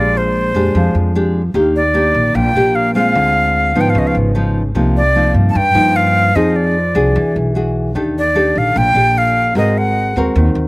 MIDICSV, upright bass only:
0, 0, Header, 1, 2, 480
1, 0, Start_track
1, 0, Tempo, 400534
1, 1853, Time_signature, 4, 2, 24, 8
1, 12798, End_track
2, 0, Start_track
2, 0, Title_t, "Upright bass"
2, 0, Program_c, 0, 32
2, 0, Note_on_c, 0, 34, 86
2, 605, Note_off_c, 0, 34, 0
2, 652, Note_on_c, 0, 41, 86
2, 876, Note_off_c, 0, 41, 0
2, 896, Note_on_c, 0, 41, 91
2, 1117, Note_off_c, 0, 41, 0
2, 1134, Note_on_c, 0, 41, 85
2, 1805, Note_off_c, 0, 41, 0
2, 1847, Note_on_c, 0, 39, 85
2, 2522, Note_off_c, 0, 39, 0
2, 2571, Note_on_c, 0, 34, 81
2, 2795, Note_off_c, 0, 34, 0
2, 2813, Note_on_c, 0, 34, 91
2, 3036, Note_off_c, 0, 34, 0
2, 3059, Note_on_c, 0, 34, 82
2, 3728, Note_off_c, 0, 34, 0
2, 3779, Note_on_c, 0, 38, 86
2, 4448, Note_off_c, 0, 38, 0
2, 4498, Note_on_c, 0, 44, 79
2, 4719, Note_off_c, 0, 44, 0
2, 4732, Note_on_c, 0, 37, 91
2, 4955, Note_off_c, 0, 37, 0
2, 4970, Note_on_c, 0, 32, 78
2, 5643, Note_off_c, 0, 32, 0
2, 5691, Note_on_c, 0, 36, 84
2, 6364, Note_off_c, 0, 36, 0
2, 6403, Note_on_c, 0, 43, 80
2, 6631, Note_off_c, 0, 43, 0
2, 6653, Note_on_c, 0, 43, 89
2, 6876, Note_off_c, 0, 43, 0
2, 6886, Note_on_c, 0, 43, 82
2, 7562, Note_off_c, 0, 43, 0
2, 7614, Note_on_c, 0, 41, 84
2, 8285, Note_off_c, 0, 41, 0
2, 8326, Note_on_c, 0, 36, 88
2, 8553, Note_off_c, 0, 36, 0
2, 8575, Note_on_c, 0, 40, 96
2, 8797, Note_off_c, 0, 40, 0
2, 8819, Note_on_c, 0, 35, 83
2, 9488, Note_off_c, 0, 35, 0
2, 9535, Note_on_c, 0, 39, 83
2, 10206, Note_off_c, 0, 39, 0
2, 10252, Note_on_c, 0, 34, 82
2, 10475, Note_off_c, 0, 34, 0
2, 10495, Note_on_c, 0, 34, 100
2, 10717, Note_off_c, 0, 34, 0
2, 10734, Note_on_c, 0, 34, 81
2, 11405, Note_off_c, 0, 34, 0
2, 11446, Note_on_c, 0, 32, 86
2, 12120, Note_off_c, 0, 32, 0
2, 12174, Note_on_c, 0, 39, 79
2, 12396, Note_off_c, 0, 39, 0
2, 12409, Note_on_c, 0, 39, 93
2, 12633, Note_off_c, 0, 39, 0
2, 12646, Note_on_c, 0, 39, 84
2, 12798, Note_off_c, 0, 39, 0
2, 12798, End_track
0, 0, End_of_file